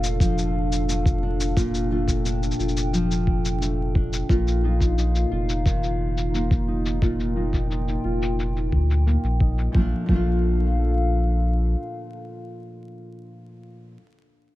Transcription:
Already playing: F1 A#2 A3 D4 F4 A4 F5
0.04 cabasa
0.20 F3, kick, cabasa
0.38 cabasa
0.72 cabasa
0.89 A3, cabasa
1.06 kick, cabasa
1.23 D4
1.40 cabasa
1.56 A#2 F4 G5, kick, cabasa
1.74 cabasa
1.91 A3 D4 F4
2.08 kick, cabasa
2.25 D4, cabasa
2.43 cabasa
2.51 cabasa
2.59 F1 F4, cabasa
2.68 cabasa
2.77 cabasa
2.93 F3, cabasa
3.11 cabasa
3.27 kick
3.45 cabasa
3.61 A3, cabasa
3.95 D4, kick
4.13 cabasa
4.29 A#1 A#2 D#4 F4 F5, kick, cabasa
4.47 cabasa
4.63 A#3 D#4 F4
4.80 kick, cabasa
4.98 D#4, cabasa
5.15 cabasa
5.32 F1 F4
5.49 cabasa
5.66 D#3, kick, cabasa
5.83 cabasa
6.17 cabasa
6.34 A#3, cabasa
6.51 kick, cabasa
6.68 D#4
6.86 cabasa
7.02 A#2 F4 G5, kick, cabasa
7.20 cabasa
7.36 A#3 D#4 F4
7.53 kick, cabasa
7.70 D#4, cabasa
7.88 cabasa
8.04 F1 F4
8.22 cabasa
8.39 cabasa
8.56 cabasa
8.72 D2, kick
8.90 cabasa
9.06 A#3, cabasa
9.23 A#1, cabasa
9.40 D#4, kick
9.58 cabasa
9.72 A#1 A#2 F3 D4 A4 F5, kick
9.77 A3 D4
9.81 F4
10.06 A#1 A#2 F3, kick
10.11 A3 D4
10.16 F4

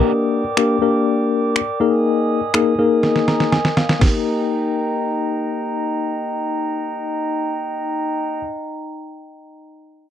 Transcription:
Already playing: A#3 D4 G4 A#4 D5 G5 D6
0.57 A#3 D4 G4 A#4, finger snap
0.82 A#3 D4 G4 A#4
1.56 finger snap
1.80 A#3 D#4 G#4 A#4 D#5 G#5 D#6
2.54 A#3 D#4 G#4 A#4, finger snap
2.78 A#3 D#4 G#4 A#4
3.03 snare
3.16 snare
3.28 A#5, snare
3.40 snare
3.52 G#5, snare
3.65 snare
3.77 F5, snare
3.89 snare
4.00 A#3 D#4 G4 A#4 D#5 G5 A#5, kick, snare, crash

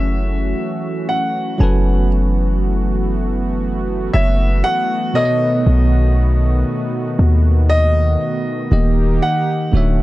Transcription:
Already playing: F#1 E3 F#3 A3 C#4 F#4 G#4 A4 B4 E5
1.09 F#5
1.58 F#1 F#3 B3 C#4 A4 G#5 A5
1.63 B4
4.13 F#1 C#5 E5
4.64 F#4 F#5
5.14 B2 D#3 B3 A4 C#5 D#5
5.19 D5
5.25 D#5
5.67 B1
7.19 D#2
7.70 D#5
8.71 D#1 D#3 A#3 D#4 G4 D#5
9.22 F#5
9.72 D1 D3 A3 C#4 F#4 C#5
9.77 E5

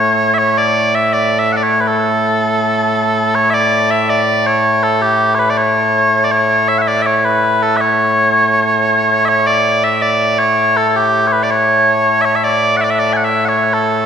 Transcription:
Already playing: A2 A3 C#5
0.34 E5
0.39 C#5
0.58 D5
0.95 E5
1.13 D5
1.39 E5
1.52 F#5
1.57 D5
1.63 C#5
1.80 B4
1.87 A4
3.35 C#5
3.51 D5 E5
3.91 E5
4.10 D5
4.47 C#5
4.83 A4
5.02 G4
5.35 C#5
5.39 B4
5.50 D5
5.58 C#5
6.24 D5
6.32 C#5
6.69 E5
6.78 E5 F#5
6.88 D5
7.02 E5
7.07 C#5
7.17 C#5
7.25 B4
7.63 A4
7.77 E5
7.81 C#5
9.25 C#5 E5
9.47 D5
9.84 E5
10.02 D5
10.39 C#5
10.77 A4
10.88 A4
10.96 G4
11.27 C#5
11.32 B4
11.43 D5
11.51 C#5
12.22 C#5 E5
12.36 E5
12.44 D5
12.77 E5 F#5
12.84 D5
12.90 E5
12.99 D5
13.13 F#5 G#5
13.24 E5
13.45 C#5 F#5
13.73 A4

